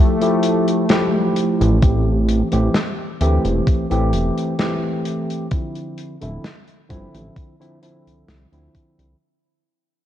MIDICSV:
0, 0, Header, 1, 5, 480
1, 0, Start_track
1, 0, Tempo, 923077
1, 947, Time_signature, 4, 2, 24, 8
1, 5226, End_track
2, 0, Start_track
2, 0, Title_t, "Tine electric piano"
2, 0, Program_c, 0, 4
2, 0, Note_on_c, 0, 53, 94
2, 0, Note_on_c, 0, 57, 89
2, 0, Note_on_c, 0, 64, 89
2, 0, Note_on_c, 0, 67, 104
2, 81, Note_off_c, 0, 53, 0
2, 82, Note_off_c, 0, 57, 0
2, 84, Note_off_c, 0, 64, 0
2, 85, Note_off_c, 0, 67, 0
2, 109, Note_on_c, 0, 53, 80
2, 112, Note_on_c, 0, 57, 77
2, 115, Note_on_c, 0, 64, 78
2, 118, Note_on_c, 0, 67, 91
2, 438, Note_off_c, 0, 53, 0
2, 439, Note_off_c, 0, 57, 0
2, 441, Note_off_c, 0, 64, 0
2, 442, Note_off_c, 0, 67, 0
2, 464, Note_on_c, 0, 53, 86
2, 466, Note_on_c, 0, 57, 75
2, 468, Note_on_c, 0, 64, 78
2, 471, Note_on_c, 0, 67, 96
2, 918, Note_off_c, 0, 53, 0
2, 919, Note_off_c, 0, 57, 0
2, 920, Note_off_c, 0, 64, 0
2, 922, Note_off_c, 0, 67, 0
2, 942, Note_on_c, 0, 52, 73
2, 945, Note_on_c, 0, 57, 65
2, 947, Note_on_c, 0, 60, 64
2, 950, Note_on_c, 0, 67, 76
2, 1280, Note_off_c, 0, 52, 0
2, 1281, Note_off_c, 0, 57, 0
2, 1282, Note_off_c, 0, 60, 0
2, 1284, Note_off_c, 0, 67, 0
2, 1308, Note_on_c, 0, 52, 79
2, 1312, Note_on_c, 0, 57, 72
2, 1314, Note_on_c, 0, 60, 70
2, 1317, Note_on_c, 0, 67, 89
2, 1435, Note_off_c, 0, 52, 0
2, 1437, Note_off_c, 0, 57, 0
2, 1438, Note_off_c, 0, 60, 0
2, 1439, Note_off_c, 0, 67, 0
2, 1665, Note_on_c, 0, 52, 97
2, 1667, Note_on_c, 0, 57, 85
2, 1669, Note_on_c, 0, 60, 83
2, 1672, Note_on_c, 0, 67, 103
2, 2002, Note_off_c, 0, 52, 0
2, 2003, Note_off_c, 0, 57, 0
2, 2004, Note_off_c, 0, 60, 0
2, 2005, Note_off_c, 0, 67, 0
2, 2028, Note_on_c, 0, 52, 88
2, 2031, Note_on_c, 0, 57, 78
2, 2034, Note_on_c, 0, 60, 81
2, 2036, Note_on_c, 0, 67, 99
2, 2357, Note_off_c, 0, 52, 0
2, 2359, Note_off_c, 0, 57, 0
2, 2360, Note_off_c, 0, 60, 0
2, 2362, Note_off_c, 0, 67, 0
2, 2383, Note_on_c, 0, 52, 82
2, 2386, Note_on_c, 0, 57, 78
2, 2388, Note_on_c, 0, 60, 73
2, 2391, Note_on_c, 0, 67, 98
2, 2838, Note_off_c, 0, 52, 0
2, 2839, Note_off_c, 0, 57, 0
2, 2840, Note_off_c, 0, 60, 0
2, 2842, Note_off_c, 0, 67, 0
2, 2864, Note_on_c, 0, 50, 70
2, 2867, Note_on_c, 0, 53, 65
2, 2870, Note_on_c, 0, 60, 67
2, 2872, Note_on_c, 0, 64, 76
2, 3201, Note_off_c, 0, 50, 0
2, 3202, Note_off_c, 0, 53, 0
2, 3204, Note_off_c, 0, 60, 0
2, 3205, Note_off_c, 0, 64, 0
2, 3230, Note_on_c, 0, 50, 82
2, 3232, Note_on_c, 0, 53, 69
2, 3234, Note_on_c, 0, 60, 68
2, 3237, Note_on_c, 0, 64, 89
2, 3356, Note_off_c, 0, 50, 0
2, 3356, Note_off_c, 0, 53, 0
2, 3358, Note_off_c, 0, 60, 0
2, 3359, Note_off_c, 0, 64, 0
2, 3583, Note_on_c, 0, 50, 94
2, 3586, Note_on_c, 0, 53, 87
2, 3588, Note_on_c, 0, 60, 83
2, 3591, Note_on_c, 0, 64, 106
2, 3921, Note_off_c, 0, 50, 0
2, 3922, Note_off_c, 0, 53, 0
2, 3923, Note_off_c, 0, 60, 0
2, 3925, Note_off_c, 0, 64, 0
2, 3949, Note_on_c, 0, 50, 83
2, 3952, Note_on_c, 0, 53, 74
2, 3955, Note_on_c, 0, 60, 81
2, 3957, Note_on_c, 0, 64, 98
2, 4043, Note_off_c, 0, 50, 0
2, 4044, Note_off_c, 0, 53, 0
2, 4045, Note_off_c, 0, 60, 0
2, 4046, Note_off_c, 0, 64, 0
2, 4063, Note_on_c, 0, 50, 76
2, 4066, Note_on_c, 0, 53, 68
2, 4069, Note_on_c, 0, 60, 70
2, 4071, Note_on_c, 0, 64, 83
2, 4401, Note_off_c, 0, 50, 0
2, 4402, Note_off_c, 0, 53, 0
2, 4404, Note_off_c, 0, 60, 0
2, 4405, Note_off_c, 0, 64, 0
2, 4430, Note_on_c, 0, 50, 84
2, 4433, Note_on_c, 0, 53, 77
2, 4434, Note_on_c, 0, 60, 76
2, 4437, Note_on_c, 0, 64, 95
2, 4759, Note_off_c, 0, 50, 0
2, 4760, Note_off_c, 0, 53, 0
2, 4761, Note_off_c, 0, 60, 0
2, 4762, Note_off_c, 0, 64, 0
2, 5226, End_track
3, 0, Start_track
3, 0, Title_t, "Soft synth lead"
3, 0, Program_c, 1, 80
3, 0, Note_on_c, 1, 57, 104
3, 663, Note_off_c, 1, 57, 0
3, 5226, End_track
4, 0, Start_track
4, 0, Title_t, "Analog synth bass"
4, 0, Program_c, 2, 38
4, 834, Note_on_c, 2, 33, 106
4, 1263, Note_off_c, 2, 33, 0
4, 1315, Note_on_c, 2, 33, 103
4, 1399, Note_off_c, 2, 33, 0
4, 1669, Note_on_c, 2, 38, 94
4, 1762, Note_off_c, 2, 38, 0
4, 1794, Note_on_c, 2, 28, 98
4, 1879, Note_off_c, 2, 28, 0
4, 1909, Note_on_c, 2, 33, 43
4, 2008, Note_off_c, 2, 33, 0
4, 2035, Note_on_c, 2, 33, 92
4, 2149, Note_on_c, 2, 28, 95
4, 2156, Note_off_c, 2, 33, 0
4, 2242, Note_off_c, 2, 28, 0
4, 3235, Note_on_c, 2, 26, 103
4, 3319, Note_off_c, 2, 26, 0
4, 3589, Note_on_c, 2, 31, 100
4, 3682, Note_off_c, 2, 31, 0
4, 3714, Note_on_c, 2, 33, 92
4, 3799, Note_off_c, 2, 33, 0
4, 4194, Note_on_c, 2, 36, 44
4, 4285, Note_off_c, 2, 36, 0
4, 4308, Note_on_c, 2, 36, 88
4, 4401, Note_off_c, 2, 36, 0
4, 4433, Note_on_c, 2, 38, 88
4, 4518, Note_off_c, 2, 38, 0
4, 4674, Note_on_c, 2, 36, 85
4, 4759, Note_off_c, 2, 36, 0
4, 5226, End_track
5, 0, Start_track
5, 0, Title_t, "Drums"
5, 111, Note_on_c, 9, 42, 50
5, 163, Note_off_c, 9, 42, 0
5, 223, Note_on_c, 9, 42, 85
5, 275, Note_off_c, 9, 42, 0
5, 352, Note_on_c, 9, 42, 59
5, 404, Note_off_c, 9, 42, 0
5, 463, Note_on_c, 9, 42, 84
5, 468, Note_on_c, 9, 38, 127
5, 515, Note_off_c, 9, 42, 0
5, 520, Note_off_c, 9, 38, 0
5, 708, Note_on_c, 9, 42, 84
5, 760, Note_off_c, 9, 42, 0
5, 838, Note_on_c, 9, 42, 60
5, 890, Note_off_c, 9, 42, 0
5, 947, Note_on_c, 9, 42, 88
5, 949, Note_on_c, 9, 36, 120
5, 999, Note_off_c, 9, 42, 0
5, 1001, Note_off_c, 9, 36, 0
5, 1189, Note_on_c, 9, 42, 83
5, 1241, Note_off_c, 9, 42, 0
5, 1309, Note_on_c, 9, 42, 71
5, 1361, Note_off_c, 9, 42, 0
5, 1427, Note_on_c, 9, 38, 117
5, 1427, Note_on_c, 9, 42, 81
5, 1479, Note_off_c, 9, 38, 0
5, 1479, Note_off_c, 9, 42, 0
5, 1668, Note_on_c, 9, 42, 100
5, 1720, Note_off_c, 9, 42, 0
5, 1793, Note_on_c, 9, 42, 61
5, 1845, Note_off_c, 9, 42, 0
5, 1909, Note_on_c, 9, 36, 113
5, 1911, Note_on_c, 9, 42, 87
5, 1961, Note_off_c, 9, 36, 0
5, 1963, Note_off_c, 9, 42, 0
5, 2034, Note_on_c, 9, 42, 57
5, 2086, Note_off_c, 9, 42, 0
5, 2148, Note_on_c, 9, 42, 94
5, 2200, Note_off_c, 9, 42, 0
5, 2276, Note_on_c, 9, 42, 60
5, 2328, Note_off_c, 9, 42, 0
5, 2386, Note_on_c, 9, 42, 84
5, 2389, Note_on_c, 9, 38, 127
5, 2438, Note_off_c, 9, 42, 0
5, 2441, Note_off_c, 9, 38, 0
5, 2628, Note_on_c, 9, 42, 89
5, 2680, Note_off_c, 9, 42, 0
5, 2757, Note_on_c, 9, 42, 64
5, 2809, Note_off_c, 9, 42, 0
5, 2866, Note_on_c, 9, 42, 88
5, 2869, Note_on_c, 9, 36, 121
5, 2918, Note_off_c, 9, 42, 0
5, 2921, Note_off_c, 9, 36, 0
5, 2992, Note_on_c, 9, 42, 52
5, 3044, Note_off_c, 9, 42, 0
5, 3109, Note_on_c, 9, 42, 85
5, 3161, Note_off_c, 9, 42, 0
5, 3232, Note_on_c, 9, 42, 67
5, 3284, Note_off_c, 9, 42, 0
5, 3350, Note_on_c, 9, 38, 107
5, 3350, Note_on_c, 9, 42, 83
5, 3402, Note_off_c, 9, 38, 0
5, 3402, Note_off_c, 9, 42, 0
5, 3471, Note_on_c, 9, 42, 51
5, 3523, Note_off_c, 9, 42, 0
5, 3589, Note_on_c, 9, 36, 64
5, 3589, Note_on_c, 9, 42, 98
5, 3641, Note_off_c, 9, 36, 0
5, 3641, Note_off_c, 9, 42, 0
5, 3716, Note_on_c, 9, 42, 73
5, 3768, Note_off_c, 9, 42, 0
5, 3829, Note_on_c, 9, 36, 116
5, 3830, Note_on_c, 9, 42, 88
5, 3881, Note_off_c, 9, 36, 0
5, 3882, Note_off_c, 9, 42, 0
5, 3960, Note_on_c, 9, 42, 56
5, 4012, Note_off_c, 9, 42, 0
5, 4070, Note_on_c, 9, 42, 104
5, 4122, Note_off_c, 9, 42, 0
5, 4198, Note_on_c, 9, 42, 57
5, 4250, Note_off_c, 9, 42, 0
5, 4308, Note_on_c, 9, 38, 110
5, 4308, Note_on_c, 9, 42, 104
5, 4360, Note_off_c, 9, 38, 0
5, 4360, Note_off_c, 9, 42, 0
5, 4434, Note_on_c, 9, 42, 53
5, 4486, Note_off_c, 9, 42, 0
5, 4549, Note_on_c, 9, 36, 63
5, 4550, Note_on_c, 9, 42, 93
5, 4601, Note_off_c, 9, 36, 0
5, 4602, Note_off_c, 9, 42, 0
5, 4676, Note_on_c, 9, 42, 72
5, 4728, Note_off_c, 9, 42, 0
5, 5226, End_track
0, 0, End_of_file